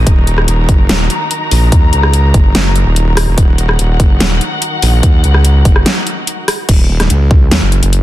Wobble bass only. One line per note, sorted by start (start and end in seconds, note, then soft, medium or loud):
0.07 0.46 D#1 medium
0.48 0.67 D#1 loud
0.69 0.88 F#1 loud
0.89 1.08 D#1 loud
1.51 1.70 A#1 loud
1.72 1.91 D#2 loud
1.93 2.33 C#2 loud
2.34 2.53 F#1 loud
2.55 2.84 F#1 loud
2.86 3.26 D#1 loud
3.28 3.36 E1 loud
3.38 3.77 D#1 medium
3.79 3.98 D#1 loud
4.00 4.19 F#1 loud
4.20 4.39 D#1 loud
4.82 5.02 A#1 medium
5.03 5.22 D#2 loud
5.24 5.64 C#2 loud
5.65 5.84 F#1 loud
6.69 6.88 D#1 loud
6.89 7.08 D#1 loud
7.10 7.50 C#2 loud
7.51 7.60 D#2 loud
7.62 7.81 F#1 loud
7.83 8.03 F#1 loud